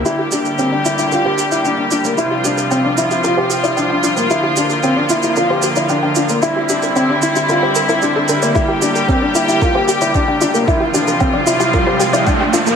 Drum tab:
SH |x-xxx-xxx-xxx-xx|x-xxx-xxx-xxx-xx|x-xxx-xxx-xxx-xx|x-xxx-xxx-xxx-xx|
BD |----------------|----------------|----------------|----------------|

SH |x-xxx-xxx-xxx-xx|x-xxx-xxx-xxx-xx|
BD |o---o---o---o---|o---o---o---o---|